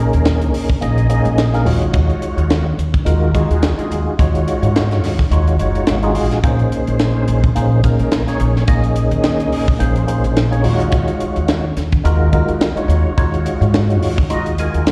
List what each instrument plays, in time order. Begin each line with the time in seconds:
Already playing: tonewheel organ A#3 C#4 D#4 G#4 A#4
0.13 upright bass D#2, closed hi-hat
0.25 snare, closed hi-hat
0.42 closed hi-hat
0.54 upright bass A#1, open hi-hat
0.70 kick
0.81 upright bass A#1, tonewheel organ A#3 C#4 D#4 G#4 D#5, closed hi-hat
0.98 closed hi-hat
1.09 tonewheel organ A#3 C#4 D#4 G#4 D#5, closed hi-hat
1.25 upright bass A#1, closed hi-hat
1.38 snare, closed hi-hat
1.54 tonewheel organ A#3 C#4 D#4 G#4 A#4, snare, closed hi-hat
1.65 upright bass D#2, tonewheel organ G#3 D#4 F4 F#4 C#5, open hi-hat
1.82 closed hi-hat
1.94 upright bass D#2, kick, closed hi-hat
2.10 closed hi-hat
2.22 muted upright bass stroke, closed hi-hat
2.37 upright bass D#2, closed hi-hat
2.50 snare, closed hi-hat
2.78 upright bass D#2, closed hi-hat
2.94 kick, closed hi-hat
3.05 upright bass D#2, tonewheel organ G#3 D#4 F4 F#4 A#4, closed hi-hat
3.34 tonewheel organ G#3 D#4 F4 F#4 G#4, kick, closed hi-hat
3.50 upright bass D#2, closed hi-hat
3.63 snare, closed hi-hat
3.78 tonewheel organ G#3 D#4 F4 F#4 G#4, muted upright bass stroke, closed hi-hat
3.91 upright bass D#2, closed hi-hat
4.19 upright bass D#2, tonewheel organ G#3 D#4 F4 F#4 C#5, kick, closed hi-hat
4.35 closed hi-hat
4.48 closed hi-hat
4.62 upright bass G#2, closed hi-hat
4.76 snare, closed hi-hat
4.91 snare, closed hi-hat
5.03 upright bass D#2, snare, open hi-hat
5.19 kick, snare
5.31 upright bass D#2, tonewheel organ G#3 D#4 F4 F#4 C#5, closed hi-hat
5.47 closed hi-hat
5.59 upright bass F#1, tonewheel organ G#3 D#4 F4 F#4 C#5, closed hi-hat
5.75 closed hi-hat
5.87 upright bass G#1, snare, closed hi-hat
6.03 tonewheel organ G#3 D#4 F4 F#4 G#4, closed hi-hat
6.15 upright bass A#1, open hi-hat
6.31 snare, closed hi-hat
6.44 upright bass A#1, tonewheel organ A#3 C#4 D#4 G#4 C5, kick, closed hi-hat
6.59 closed hi-hat
6.72 muted upright bass stroke, closed hi-hat
6.87 upright bass A#1, closed hi-hat
6.99 snare, closed hi-hat
7.28 upright bass A#1, closed hi-hat
7.44 kick, closed hi-hat
7.55 upright bass A#1, tonewheel organ A#3 C#4 D#4 G#4 C5, closed hi-hat
7.84 tonewheel organ A#3 C#4 D#4 G#4 A#4, kick, closed hi-hat
7.99 upright bass A#1, closed hi-hat
8.12 snare, closed hi-hat
8.27 tonewheel organ A#3 C#4 D#4 G#4 C#5, muted upright bass stroke, snare, closed hi-hat
8.40 upright bass A#1, closed hi-hat
8.56 snare
8.67 upright bass A#1, tonewheel organ A#3 C#4 D#4 G#4 D#5, kick, closed hi-hat
8.84 closed hi-hat
8.96 closed hi-hat
9.11 upright bass D#2, closed hi-hat
9.24 snare, closed hi-hat
9.40 closed hi-hat
9.52 upright bass A#1, open hi-hat
9.68 kick
9.79 upright bass A#1, tonewheel organ A#3 C#4 D#4 G#4 C5, closed hi-hat
9.96 closed hi-hat
10.07 tonewheel organ A#3 C#4 D#4 G#4 C5, closed hi-hat
10.24 upright bass A#1, closed hi-hat
10.37 snare, closed hi-hat
10.51 tonewheel organ A#3 C#4 D#4 G#4 C#5, closed hi-hat
10.63 upright bass D#2, tonewheel organ G#3 D#4 F4 F#4 C#5, open hi-hat
10.80 closed hi-hat
10.92 upright bass D#2, kick, closed hi-hat
11.08 closed hi-hat
11.20 muted upright bass stroke, closed hi-hat
11.36 upright bass D#2, closed hi-hat
11.48 snare, closed hi-hat
11.77 upright bass D#2, snare, closed hi-hat
11.92 kick, closed hi-hat
12.04 upright bass D#2, tonewheel organ G#3 D#4 F4 F#4 A#4, closed hi-hat
12.32 tonewheel organ G#3 D#4 F4 F#4 A#4, kick, closed hi-hat
12.48 upright bass D#2, closed hi-hat
12.61 snare, closed hi-hat
12.76 tonewheel organ G#3 D#4 F4 F#4 C#5, muted upright bass stroke, closed hi-hat
12.88 upright bass D#2, closed hi-hat
13.17 upright bass D#2, tonewheel organ G#3 D#4 F4 F#4 C#5, kick, closed hi-hat
13.34 closed hi-hat
13.46 closed hi-hat
13.61 upright bass G#2, closed hi-hat
13.74 snare, closed hi-hat
13.90 closed hi-hat
14.02 upright bass D#2, open hi-hat
14.18 kick
14.30 upright bass D#2, tonewheel organ G#3 D#4 F4 F#4 D#5, closed hi-hat
14.46 closed hi-hat
14.58 tonewheel organ G#3 D#4 F4 F#4 A#4 G#5, closed hi-hat
14.74 upright bass D#2, closed hi-hat
14.87 upright bass G#1, tonewheel organ F5, snare, closed hi-hat